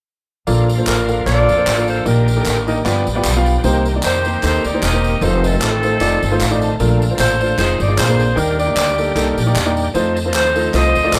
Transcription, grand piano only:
0.47 1.05 A#2 medium
0.47 0.67 A#3 medium
0.47 0.67 F4 medium
0.47 0.67 A4 medium
0.47 0.67 D5 medium
0.77 0.96 A#3 medium
0.77 0.96 F4 medium
0.77 0.96 A4 medium
0.77 0.96 C5 medium
1.08 1.19 A#3 medium
1.08 1.19 F4 medium
1.08 1.19 A4 medium
1.08 1.20 F5 medium
1.25 1.46 A#3 medium
1.25 1.46 F4 medium
1.25 1.47 A4 medium
1.25 1.47 C5 medium
1.57 1.68 A#3 medium
1.57 1.68 F4 medium
1.57 1.69 A4 medium
1.57 1.69 C5 medium
1.76 1.95 A#3 medium
1.76 1.95 F4 medium
1.76 1.95 A4 medium
1.76 1.95 F5 medium
2.05 2.63 A#2 medium
2.05 2.25 A#3 medium
2.05 2.25 D#4 medium
2.05 2.26 G4 medium
2.05 2.26 D5 medium
2.36 2.54 A#3 medium
2.36 2.54 D#4 medium
2.36 2.54 G4 medium
2.36 2.54 A4 medium
2.67 2.78 A#3 medium
2.67 2.78 D#4 medium
2.67 2.78 G4 medium
2.67 2.78 D#5 loud
2.85 3.42 G2 medium
2.85 3.05 B3 medium
2.85 3.05 F4 medium
2.85 3.05 G4 medium
2.85 3.05 D5 medium
3.15 3.27 B3 medium
3.15 3.27 F4 medium
3.15 3.27 G4 medium
3.15 3.27 D5 loud
3.36 3.54 B3 medium
3.36 3.54 F4 medium
3.36 3.54 G4 medium
3.36 3.54 F5 loud
3.64 4.21 C3 medium
3.64 3.84 A#3 medium
3.64 3.84 D#4 medium
3.64 3.84 G4 medium
3.64 3.84 C5 loud
3.95 4.13 A#3 medium
3.95 4.13 D#4 medium
3.95 4.13 G4 medium
3.95 4.13 D5 medium
4.25 4.36 A#3 medium
4.25 4.36 D#4 medium
4.25 4.36 G4 medium
4.25 4.36 C5 medium
4.43 4.63 A#3 medium
4.43 4.63 D#4 medium
4.43 4.63 G4 medium
4.43 4.63 A4 medium
4.74 4.85 A#3 medium
4.74 4.85 D#4 medium
4.74 4.85 G4 medium
4.74 4.85 C5 medium
4.93 5.11 A#3 medium
4.93 5.11 D#4 medium
4.93 5.12 G4 medium
4.93 5.12 C5 medium
5.22 5.42 A3 medium
5.22 5.42 D#4 medium
5.22 5.42 F4 medium
5.22 5.42 C5 medium
5.52 5.70 A3 medium
5.52 5.70 D#4 medium
5.52 5.71 F4 medium
5.52 5.71 A4 medium
5.83 5.94 A3 medium
5.83 5.94 D#4 medium
5.83 5.94 F4 medium
5.83 5.94 C5 medium
6.00 6.20 A3 medium
6.00 6.21 D#4 medium
6.00 6.21 F4 medium
6.00 6.21 D5 loud
6.31 6.42 A3 medium
6.31 6.42 D#4 medium
6.31 6.43 F4 medium
6.31 6.43 C5 loud
6.41 6.61 F5 medium
6.50 6.69 A3 medium
6.50 6.69 D#4 medium
6.50 6.69 F4 medium
6.50 6.69 D5 medium
6.62 6.79 A5 medium
6.80 7.37 A#2 medium
6.80 7.00 A3 medium
6.80 7.00 D4 medium
6.80 7.00 F4 medium
6.80 7.00 A#4 loud
7.10 7.28 A3 medium
7.10 7.28 D4 medium
7.10 7.28 F4 medium
7.10 7.28 C5 medium
7.41 7.51 A3 medium
7.41 7.51 D4 medium
7.41 7.52 F4 medium
7.41 7.52 C5 medium
7.58 7.78 G#3 medium
7.58 7.78 D#4 medium
7.58 7.78 F4 medium
7.58 7.78 C5 medium
7.88 7.97 G#3 medium
7.88 7.97 D#4 medium
7.88 7.98 F4 medium
7.88 7.98 D5 medium
7.97 8.34 A#2 medium
8.08 8.26 A#3 medium
8.08 8.27 D4 medium
8.08 8.27 G#4 medium
8.08 8.27 C5 medium
8.36 8.94 D#3 medium
8.36 8.57 A#3 medium
8.36 8.57 D#4 medium
8.36 8.57 G4 medium
8.36 8.57 D5 medium
8.67 8.85 A#3 medium
8.67 8.85 D#4 medium
8.67 8.85 G4 medium
8.67 8.85 D5 medium
8.98 9.09 A#3 medium
8.98 9.09 D#4 medium
8.98 9.09 G4 medium
8.98 9.09 A4 medium
9.15 9.35 A#3 medium
9.15 9.36 D#4 medium
9.15 9.36 G4 medium
9.15 9.36 A4 medium
9.46 9.57 A#3 medium
9.46 9.57 D#4 medium
9.46 9.58 G4 medium
9.46 9.58 D5 loud
9.65 9.84 A#3 medium
9.65 9.84 D#4 medium
9.65 9.84 G4 medium
9.65 9.84 D5 medium
9.95 10.15 A3 medium
9.95 10.15 D#4 medium
9.95 10.15 F4 medium
9.95 10.15 C5 loud
10.25 10.43 A3 medium
10.25 10.43 D#4 medium
10.25 10.43 F4 medium
10.25 10.43 C5 medium
10.55 10.66 A3 medium
10.55 10.67 D#4 medium
10.55 10.67 F4 medium
10.55 10.67 A4 medium
10.73 10.93 A3 medium
10.73 10.94 D#4 medium
10.73 10.94 F4 medium
10.73 10.94 C5 medium
11.04 11.15 A3 medium
11.04 11.15 D#4 medium
11.04 11.15 F4 medium
11.04 11.16 D5 medium

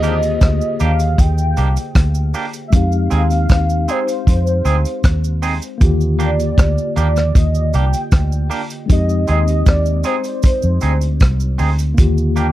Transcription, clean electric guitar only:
0.03 0.13 A#3 medium
0.03 0.14 D4 medium
0.03 0.14 G4 medium
0.80 0.90 A#3 medium
0.80 0.91 D4 medium
0.80 0.91 G4 medium
1.00 muted clean electric guitar stroke soft
1.57 1.67 A#3 medium
1.57 1.68 D4 medium
1.57 1.68 G4 medium
2.34 2.44 A#3 medium
2.34 2.45 D4 medium
2.34 2.45 G4 medium
3.10 3.21 C4 medium
3.10 3.21 D#4 medium
3.10 3.22 G#4 medium
3.88 3.99 C4 medium
3.88 3.99 D#4 medium
3.88 3.99 G#4 medium
4.07 muted clean electric guitar stroke soft
4.65 4.75 C4 medium
4.65 4.75 D#4 medium
4.65 4.76 G#4 medium
5.42 5.53 C4 medium
5.42 5.53 D#4 medium
5.42 5.53 G#4 medium
6.19 6.29 A#3 medium
6.19 6.30 D4 medium
6.19 6.30 G4 medium
6.96 7.07 A#3 medium
6.96 7.07 D4 medium
6.96 7.07 G4 medium
7.16 muted clean electric guitar stroke soft
7.74 7.84 A#3 medium
7.74 7.84 D4 medium
7.74 7.85 G4 medium
8.50 8.60 A#3 medium
8.50 8.61 D4 medium
8.50 8.61 G4 medium
9.28 9.38 C4 medium
9.28 9.38 D#4 medium
9.28 9.38 G#4 medium
10.04 10.15 C4 medium
10.04 10.15 D#4 medium
10.04 10.15 G#4 medium
10.25 muted clean electric guitar stroke soft
10.81 10.92 C4 medium
10.81 10.92 D#4 medium
10.81 10.92 G#4 medium
11.58 11.69 C4 medium
11.58 11.69 D#4 medium
11.58 11.69 G#4 medium
12.36 12.46 A#3 medium
12.36 12.46 D4 medium
12.36 12.47 G4 medium

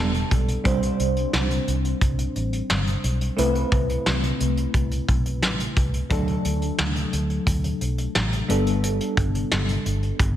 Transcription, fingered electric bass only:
0.00 0.22 E1 medium
0.32 0.56 B1 medium
0.65 0.90 C2 medium
1.00 1.24 C2 medium
1.33 1.58 C2 medium
1.68 1.92 C2 medium
2.02 2.26 C2 loud
2.36 2.60 A1 medium
2.70 2.94 G1 medium
3.04 3.28 B1 medium
3.38 3.63 C2 medium
3.72 3.97 C2 medium
4.06 4.31 C2 medium
4.40 4.65 C2 medium
4.74 4.99 C2 loud
5.09 5.43 B1 medium
5.43 5.67 A1 medium
5.77 6.01 C2 medium
6.11 6.35 D2 medium
6.45 6.69 D2 medium
6.79 7.03 D2 medium
7.13 7.38 D2 medium
7.47 7.71 D2 medium
7.81 8.06 B1 medium
8.16 8.40 A1 medium
8.50 8.99 G1 medium
9.17 9.42 G1 medium
9.52 9.76 G1 medium
9.86 10.10 G1 medium
10.20 10.37 G1 medium

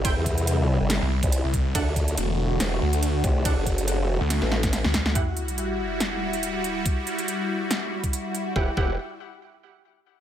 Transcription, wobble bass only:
0.00 0.15 G1 loud
0.16 0.78 E2 loud
0.80 1.00 G1 loud
1.23 1.42 C2 loud
1.75 2.16 D2 medium
2.60 2.80 E1 loud
3.24 3.55 C2 loud
3.57 4.01 F#1 loud
4.01 4.19 F1 loud
4.42 4.83 A1 loud
8.56 8.68 E1 medium
8.77 8.97 E1 medium

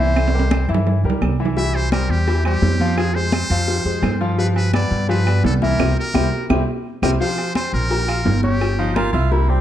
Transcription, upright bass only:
0.00 0.63 C2 medium
0.68 1.02 G2 medium
1.03 1.20 C#2 medium
1.21 2.04 C2 medium
2.09 2.59 E2 medium
2.62 3.44 F2 medium
3.50 3.83 F2 loud
3.85 4.02 F2 medium
4.02 4.85 G2 medium
4.91 5.40 G2 loud
5.44 5.77 C2 loud
5.79 5.92 C2 medium
6.14 6.27 C2 loud
6.49 6.63 C2 loud
7.02 7.16 C2 loud
7.73 8.22 A#1 loud
8.26 9.08 G1 medium
9.13 9.61 C2 loud

